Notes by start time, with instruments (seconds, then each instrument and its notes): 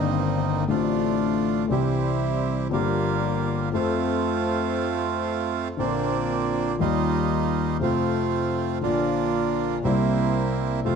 Already playing: grand piano G1 G2 D#3 A#3 C4 G4, bandoneon G2 A#3 C4 D#4
0.68 grand piano A1 A2 D3 A3 C4 F4, bandoneon A3 D4 F4
1.68 grand piano C2 C3 E3 G3 C4, bandoneon G3 C4 E4
1.72 grand piano G4
2.69 grand piano G1 G2 F3 A#3 D4, bandoneon G3 A#3 F4
2.73 grand piano G4
3.72 grand piano F2 F3 A3 C4, bandoneon A3 C4 F4
3.76 grand piano A4
5.77 grand piano A#1 A#2 D3 A#3 C4 F4, bandoneon A#3 C4 D4
6.79 grand piano D#2 D#3 G3 A#3 F4, bandoneon G3 D#4 F4
7.79 grand piano F2 C3 F3 A3 F4, bandoneon A3 C4 F4
8.81 grand piano A#1 A#2 D3 F3 A#3, bandoneon A#3 D4 F4
8.85 grand piano F4
9.83 grand piano C2 C3 G3 A#3, bandoneon A#3 C4 E4
9.87 grand piano E4
10.84 grand piano F2 C3 F3 A3 F4, bandoneon A3 C4 F4